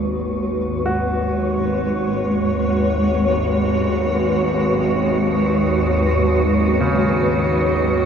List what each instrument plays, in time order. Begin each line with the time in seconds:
Already playing: synth drone G#1 D#2, ambient pad G#3 F#4 B4, synth texture C#5
0.25 ambient pad C#5
0.86 grand piano F#4
6.70 ambient pad D#5
6.80 grand piano C#3